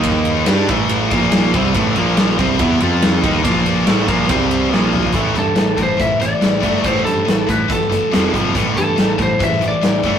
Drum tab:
RD |x-x-x-x-x-x-x-x-|x-x-x-x-x-x-x-x-|x-x-x-x-x-x-----|----------------|
HH |----------------|----------------|----------------|x-x-x-x-x-x-x-x-|
SD |----o-------o---|----o-------o---|----o-------o---|----o-------o---|
T2 |----------------|----------------|--------------o-|----------------|
FT |----------------|----------------|---------------o|----------------|
BD |o-----o---o---o-|o-----o-o-----o-|o-----o-o-------|o-----o-o-----o-|

RD |----------------|----------------|
HH |x-x-x-x-x-x-x-x-|x-x-x-x-x-x-x-x-|
SD |----o----o--o---|----o----o--o---|
T2 |----------------|----------------|
FT |----------------|----------------|
BD |o-----o-o-----o-|o-----o-o-----o-|